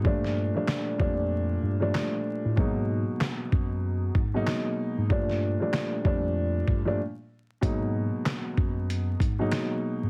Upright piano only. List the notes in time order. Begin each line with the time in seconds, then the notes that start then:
0.04 A#2 F3 G3 A3 D4
0.54 A#2 F3 G3 A3 D4
0.98 A#2 F3 G3 A3 D4
1.80 A#2 F3 G3 A3 D4
2.56 B2 F#3 G#3 A#3 D#4
4.34 B2 F#3 G#3 A#3 D#4
5.09 A#2 F3 G3 A3 D4
5.60 A#2 F3 G3 A3 D4
6.04 A#2 F3 G3 A3 D4
6.85 A#2 F3 G3 A3 D4
7.61 B2 F#3 G#3 A#3 D#4
9.39 B2 F#3 G#3 A#3 D#4